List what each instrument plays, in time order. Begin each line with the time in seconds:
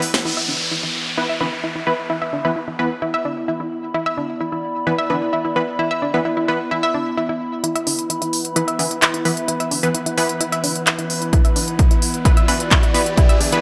Already playing: synth drone E3 B3, ambient pad B3 E4 D5 E6
0.02 closed hi-hat, open hi-hat
0.14 snare, closed hi-hat
0.25 ambient pad B3, synth arpeggio sound E4, downlifter
0.37 synth arpeggio sound E5
0.48 synth arpeggio sound D4
0.70 ambient pad E4, synth arpeggio sound E4
0.83 synth arpeggio sound E4
1.18 supersaw synth E3 B3 B4, synth arpeggio sound E4
1.25 ambient pad E5
1.29 synth arpeggio sound E5
1.34 ambient pad B5
1.41 supersaw synth E3 B3 B4, synth arpeggio sound D4
1.64 synth arpeggio sound E4
1.76 synth arpeggio sound E4
1.87 supersaw synth E3 B3 B4
2.10 synth arpeggio sound E4
2.22 synth arpeggio sound E5
2.33 synth arpeggio sound D4
2.45 supersaw synth E3 B3 B4
2.56 synth arpeggio sound E4
2.68 synth arpeggio sound E4
2.79 supersaw synth E3 B3 B4
3.02 synth arpeggio sound E4
3.14 synth arpeggio sound E5
3.25 synth arpeggio sound D4
3.48 synth arpeggio sound E4
3.60 synth arpeggio sound E4
3.94 synth arpeggio sound E4
4.05 ambient pad D5, synth arpeggio sound E5
4.17 synth arpeggio sound D4
4.40 synth arpeggio sound E4
4.52 synth arpeggio sound E4
4.87 supersaw synth E3 B3 B4, synth arpeggio sound E4
4.98 synth arpeggio sound E5
5.10 supersaw synth E3 B3 B4, synth arpeggio sound D4
5.33 synth arpeggio sound E4
5.45 synth arpeggio sound E4
5.56 supersaw synth E3 B3 B4
5.79 synth arpeggio sound E4
5.91 synth arpeggio sound E5
6.02 synth arpeggio sound D4
6.14 supersaw synth E3 B3 B4
6.25 synth arpeggio sound E4
6.37 synth arpeggio sound E4
6.48 supersaw synth E3 B3 B4
6.71 synth arpeggio sound E4
6.83 synth arpeggio sound E5
6.94 synth arpeggio sound D4
7.17 synth arpeggio sound E4
7.29 synth arpeggio sound E4
7.64 synth drone E3 B3, synth arpeggio sound E4, closed hi-hat, riser
7.75 synth arpeggio sound E5, closed hi-hat
7.87 synth arpeggio sound D4, open hi-hat
7.99 closed hi-hat
8.10 synth arpeggio sound E4, closed hi-hat
8.16 ambient pad E5
8.22 synth arpeggio sound E4, closed hi-hat
8.33 open hi-hat
8.45 closed hi-hat
8.56 supersaw synth E3 B3 B4, synth arpeggio sound E4, closed hi-hat
8.68 synth arpeggio sound E5, closed hi-hat
8.79 supersaw synth E3 B3 B4, synth arpeggio sound D4, open hi-hat
8.91 closed hi-hat
9.02 synth arpeggio sound E4, clap, closed hi-hat
9.14 synth arpeggio sound E4, closed hi-hat
9.25 supersaw synth E3 B3 B4, open hi-hat
9.37 closed hi-hat
9.48 synth arpeggio sound E4, closed hi-hat
9.60 synth arpeggio sound E5, closed hi-hat
9.71 synth arpeggio sound D4, open hi-hat
9.83 supersaw synth E3 B3 B4, closed hi-hat
9.94 synth arpeggio sound E4, closed hi-hat
10.06 synth arpeggio sound E4, closed hi-hat
10.18 supersaw synth E3 B3 B4, open hi-hat
10.29 closed hi-hat
10.41 synth arpeggio sound E4, closed hi-hat
10.52 synth arpeggio sound E5, closed hi-hat
10.64 synth arpeggio sound D4, open hi-hat
10.76 closed hi-hat
10.87 synth arpeggio sound E4, clap, closed hi-hat
10.98 synth arpeggio sound E4, closed hi-hat
11.10 open hi-hat
11.22 closed hi-hat
11.33 synth arpeggio sound E4, kick, closed hi-hat
11.45 synth arpeggio sound E5, closed hi-hat
11.56 synth arpeggio sound D4, open hi-hat
11.68 closed hi-hat
11.79 synth arpeggio sound E4, kick, closed hi-hat
11.91 synth arpeggio sound E4, closed hi-hat
12.00 ambient pad D5, open hi-hat
12.14 closed hi-hat
12.25 supersaw synth E3 B3 B4, synth arpeggio sound E4, kick, closed hi-hat
12.37 synth arpeggio sound E5, closed hi-hat
12.48 supersaw synth E3 B3 B4, synth arpeggio sound D4, open hi-hat
12.60 closed hi-hat
12.71 synth arpeggio sound E4, kick, clap, closed hi-hat
12.83 synth arpeggio sound E4, closed hi-hat
12.94 supersaw synth E3 B3 B4, open hi-hat
13.06 closed hi-hat
13.17 synth arpeggio sound E4, kick, closed hi-hat
13.29 synth arpeggio sound E5, closed hi-hat
13.41 synth arpeggio sound D4, open hi-hat
13.52 supersaw synth E3 B3 B4, closed hi-hat